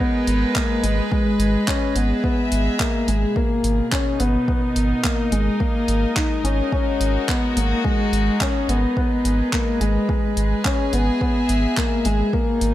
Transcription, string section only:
0.00 3.36 G#3 medium
0.00 1.12 D#4 medium
0.00 1.11 A#4 medium
0.00 3.35 B4 medium
1.31 4.26 G#4 medium
2.13 3.36 E5 medium
3.36 5.60 B2 medium
3.99 10.09 D#4 medium
4.37 10.09 A#4 medium
5.60 12.33 G#3 medium
6.61 8.74 F#4 medium
8.86 12.33 B4 medium
10.42 12.74 G#4 medium
11.09 12.33 E5 medium
12.33 12.74 B2 medium
12.50 12.74 D#4 medium

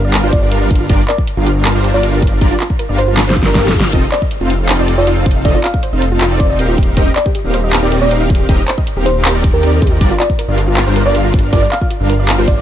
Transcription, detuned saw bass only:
0.00 0.21 G1 loud
0.23 0.40 G1 loud
0.43 0.50 G1 loud
0.52 0.88 G1 loud
0.90 1.00 G1 loud
1.37 1.73 G1 medium
1.75 1.92 G1 loud
1.94 2.02 G1 loud
2.03 2.39 G1 medium
2.41 2.51 G1 loud
2.89 3.25 G1 loud
3.27 3.44 G1 loud
3.46 3.53 G1 loud
3.55 3.95 G1 loud
3.93 4.03 F1 loud
4.41 4.77 F1 medium
4.79 4.96 F1 loud
4.98 5.05 F1 loud
5.07 5.43 F1 loud
5.45 5.55 F1 loud
5.93 6.29 F1 loud
6.31 6.48 F1 loud
6.50 6.57 F1 loud
6.59 6.95 D#1 loud
6.97 7.07 D#1 loud
7.45 7.81 D#1 loud
7.83 8.00 D#1 loud
8.02 8.09 D#1 loud
8.11 8.47 D#1 medium
8.49 8.59 D#1 loud
8.97 9.33 D#1 medium
9.35 9.52 D#1 loud
9.54 9.80 D#2 medium
9.82 9.99 D#2 loud
10.01 10.11 G1 loud
10.48 10.85 G1 loud
10.87 11.04 G1 loud
11.06 11.13 G1 loud
11.15 11.51 G1 medium
11.53 11.63 G1 loud
12.00 12.37 G1 medium
12.38 12.56 G1 loud
12.57 12.62 G1 loud

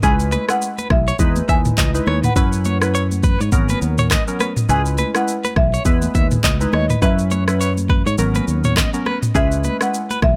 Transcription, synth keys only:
0.03 0.45 G#3 medium
0.03 0.45 C#4 medium
0.03 0.45 E4 medium
0.03 0.45 B4 loud
0.49 0.68 G#3 medium
0.49 0.68 C#4 medium
0.49 0.68 E4 medium
0.49 0.69 B4 medium
1.19 1.88 G#3 medium
1.19 1.88 D#4 medium
1.19 1.88 E4 medium
1.19 1.88 B4 loud
1.94 2.14 G#3 medium
1.94 2.14 D#4 medium
1.94 2.14 E4 medium
1.94 2.14 B4 medium
2.36 2.78 F#3 medium
2.36 2.78 C#4 medium
2.36 2.78 E4 medium
2.36 2.78 B4 loud
2.82 3.01 F#3 medium
2.82 3.01 C#4 medium
2.82 3.02 E4 medium
2.82 3.02 B4 medium
3.52 4.21 F#3 medium
3.52 4.21 B3 medium
3.52 4.21 C#4 medium
3.52 4.21 A#4 loud
4.27 4.47 F#3 medium
4.27 4.47 B3 medium
4.27 4.47 C#4 medium
4.27 4.47 A#4 medium
4.69 5.11 G#3 medium
4.69 5.11 C#4 medium
4.69 5.11 E4 medium
4.69 5.11 B4 loud
5.15 5.34 G#3 medium
5.15 5.34 C#4 medium
5.15 5.35 E4 medium
5.15 5.35 B4 medium
5.85 6.54 G#3 medium
5.85 6.54 B3 medium
5.85 6.54 E4 medium
5.85 6.54 B4 loud
6.60 6.80 G#3 medium
6.60 6.80 D#4 medium
6.60 6.80 E4 medium
6.60 6.80 B4 medium
7.02 7.44 F#3 medium
7.02 7.44 C#4 medium
7.02 7.44 E4 medium
7.02 7.44 B4 loud
7.48 7.67 F#3 medium
7.48 7.67 C#4 medium
7.48 7.68 E4 medium
7.48 7.68 B4 medium
8.18 8.87 F#3 medium
8.18 8.87 B3 medium
8.18 8.87 C#4 medium
8.18 8.87 A#4 loud
8.93 9.13 F#3 medium
8.93 9.13 B3 medium
8.93 9.13 C#4 medium
8.93 9.13 A#4 medium
9.35 9.77 G#3 medium
9.35 9.77 C#4 medium
9.35 9.77 E4 medium
9.35 9.77 B4 loud
9.81 10.00 G#3 medium
9.81 10.00 C#4 medium
9.81 10.01 E4 medium
9.81 10.01 B4 medium

